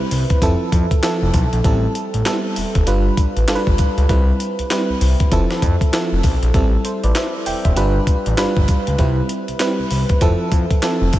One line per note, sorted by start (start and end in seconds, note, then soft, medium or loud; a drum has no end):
0.00 0.43 G3 medium
0.00 0.42 C4 medium
0.00 0.43 E4 medium
0.00 0.44 B4 loud
0.11 0.25 C2 medium
0.11 open hi-hat medium
0.11 tambourine medium
0.30 kick medium
0.30 closed hi-hat medium
0.42 0.56 F1 loud
0.42 0.96 F3 medium
0.42 0.96 C4 medium
0.42 0.96 E4 medium
0.42 0.96 A4 loud
0.42 kick loud
0.42 closed hi-hat medium
0.42 tambourine medium
0.72 0.86 F2 loud
0.72 kick loud
0.72 closed hi-hat medium
0.72 tambourine medium
0.91 kick medium
0.91 closed hi-hat medium
1.03 1.57 F3 medium
1.03 1.57 C4 medium
1.03 1.57 E4 medium
1.03 1.58 A4 loud
1.03 snare loud
1.03 clap loud
1.03 closed hi-hat medium
1.03 tambourine medium
1.22 1.31 F1 medium
1.34 1.48 B1 loud
1.34 kick medium
1.34 closed hi-hat medium
1.34 tambourine medium
1.53 1.61 A#1 loud
1.53 closed hi-hat medium
1.64 1.87 A1 loud
1.64 2.18 G3 medium
1.64 2.18 C4 medium
1.64 2.18 E4 medium
1.64 2.19 A4 loud
1.64 kick loud
1.64 closed hi-hat medium
1.95 closed hi-hat medium
1.95 tambourine medium
2.14 2.23 A1 medium
2.14 closed hi-hat medium
2.25 2.79 G3 medium
2.25 2.34 B3 medium
2.25 2.80 E4 medium
2.25 2.80 A4 loud
2.25 snare loud
2.25 clap loud
2.25 closed hi-hat medium
2.25 tambourine loud
2.32 2.83 C4 medium
2.56 2.64 E1 soft
2.56 open hi-hat medium
2.56 tambourine medium
2.75 2.84 E1 medium
2.75 kick medium
2.75 closed hi-hat medium
2.86 3.09 G1 loud
2.86 3.40 G3 medium
2.86 3.41 D4 medium
2.86 3.41 F4 medium
2.86 3.41 B4 loud
2.86 closed hi-hat medium
2.86 tambourine medium
3.17 3.25 A1 soft
3.17 kick loud
3.17 closed hi-hat medium
3.17 tambourine medium
3.36 3.45 A1 medium
3.36 closed hi-hat medium
3.48 3.56 G1 medium
3.48 4.02 G3 medium
3.48 4.02 D4 medium
3.48 4.02 F4 medium
3.48 3.56 A4 medium
3.48 snare loud
3.48 clap medium
3.48 closed hi-hat medium
3.48 tambourine medium
3.55 4.06 B4 loud
3.67 3.76 G1 medium
3.67 kick medium
3.78 kick loud
3.78 closed hi-hat medium
3.78 tambourine medium
3.97 4.06 C#2 medium
3.97 closed hi-hat soft
4.09 4.32 C2 loud
4.09 4.63 G3 medium
4.09 4.63 C4 medium
4.09 4.63 E4 medium
4.09 4.64 B4 medium
4.09 kick loud
4.09 closed hi-hat medium
4.40 closed hi-hat medium
4.40 tambourine medium
4.59 4.64 C2 medium
4.59 closed hi-hat medium
4.70 5.24 G3 medium
4.70 5.24 C4 medium
4.70 5.25 E4 medium
4.70 5.25 B4 loud
4.70 snare loud
4.70 clap loud
4.70 closed hi-hat medium
4.70 tambourine loud
4.90 4.94 C2 soft
5.01 5.15 C2 loud
5.01 open hi-hat medium
5.01 tambourine medium
5.20 kick loud
5.20 closed hi-hat medium
5.31 5.46 F1 loud
5.31 5.85 F3 medium
5.31 5.86 C4 medium
5.31 5.86 E4 medium
5.31 5.86 A4 loud
5.31 kick loud
5.31 closed hi-hat medium
5.31 tambourine medium
5.51 snare medium
5.62 5.76 F2 loud
5.62 kick loud
5.62 closed hi-hat medium
5.62 tambourine medium
5.81 kick medium
5.81 closed hi-hat medium
5.93 6.47 F3 medium
5.93 6.47 C4 medium
5.93 6.47 E4 medium
5.93 6.47 A4 loud
5.93 snare loud
5.93 clap loud
5.93 closed hi-hat medium
5.93 tambourine medium
6.12 6.21 F1 medium
6.23 6.38 B1 loud
6.23 kick loud
6.23 open hi-hat medium
6.23 tambourine medium
6.42 6.51 A#1 loud
6.42 closed hi-hat soft
6.54 6.77 A1 loud
6.54 7.08 G3 medium
6.54 7.08 C4 medium
6.54 7.08 E4 medium
6.54 6.84 A4 medium
6.54 kick loud
6.54 closed hi-hat medium
6.85 7.03 A4 medium
6.85 7.03 C5 medium
6.85 closed hi-hat medium
6.85 tambourine medium
7.04 7.12 A1 loud
7.04 7.15 B4 medium
7.04 7.15 D5 medium
7.04 closed hi-hat medium
7.15 7.45 C5 medium
7.15 7.45 E5 medium
7.15 snare loud
7.15 clap medium
7.15 closed hi-hat medium
7.15 tambourine loud
7.46 7.54 E1 medium
7.46 7.64 E5 medium
7.46 7.64 G5 medium
7.46 open hi-hat medium
7.46 tambourine medium
7.65 7.74 E1 medium
7.65 7.94 C5 medium
7.65 7.94 E5 medium
7.65 kick medium
7.65 closed hi-hat medium
7.76 7.99 G1 loud
7.76 8.30 G3 medium
7.76 8.30 D4 medium
7.76 8.31 F4 medium
7.76 8.31 B4 loud
7.76 closed hi-hat medium
7.76 tambourine medium
8.07 8.14 A1 medium
8.07 kick loud
8.07 closed hi-hat medium
8.07 tambourine medium
8.26 8.35 A1 loud
8.26 closed hi-hat medium
8.37 8.45 G1 soft
8.37 8.91 G3 medium
8.37 8.92 D4 medium
8.37 8.92 F4 medium
8.37 8.92 B4 loud
8.37 snare loud
8.37 clap loud
8.37 closed hi-hat medium
8.37 tambourine medium
8.57 8.65 G1 medium
8.57 kick loud
8.68 kick medium
8.68 closed hi-hat medium
8.68 tambourine medium
8.87 8.96 C#2 medium
8.87 closed hi-hat soft
8.98 9.21 C2 loud
8.98 9.53 G3 medium
8.98 9.53 C4 medium
8.98 9.53 E4 medium
8.98 9.53 B4 medium
8.98 kick loud
8.98 closed hi-hat medium
9.29 closed hi-hat medium
9.29 tambourine medium
9.48 9.53 C2 soft
9.48 closed hi-hat medium
9.60 10.14 G3 medium
9.60 10.14 C4 medium
9.60 10.14 E4 medium
9.60 10.14 B4 medium
9.60 snare loud
9.60 clap medium
9.60 closed hi-hat medium
9.60 tambourine loud
9.79 9.84 C2 soft
9.90 10.05 C2 medium
9.90 open hi-hat medium
9.90 tambourine medium
10.09 kick medium
10.09 closed hi-hat medium
10.21 10.35 F1 loud
10.21 10.75 F3 medium
10.21 10.75 C4 medium
10.21 10.76 E4 medium
10.21 10.76 A4 loud
10.21 kick loud
10.21 closed hi-hat medium
10.21 tambourine medium
10.52 10.66 F2 loud
10.52 kick loud
10.52 closed hi-hat medium
10.52 tambourine medium
10.71 kick medium
10.71 closed hi-hat medium
10.82 11.19 F3 medium
10.82 11.19 C4 medium
10.82 11.19 E4 medium
10.82 11.19 A4 loud
10.82 snare loud
10.82 clap loud
10.82 closed hi-hat medium
10.82 tambourine medium
11.01 11.10 F1 medium
11.13 11.19 B1 medium
11.13 kick medium
11.13 closed hi-hat medium
11.13 tambourine medium